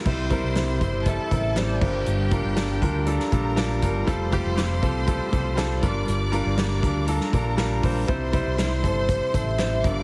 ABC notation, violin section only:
X:1
M:4/4
L:1/8
Q:1/4=120
K:Cmix
V:1 name="Violin section"
[cc']4 [Aa]3 [Gg]- | [Gg]4 [Bb]4 | [cc']6- [cc'] [dd']- | [dd']4 [Bb]4 |
[cc']6- [cc'] [dd'] |]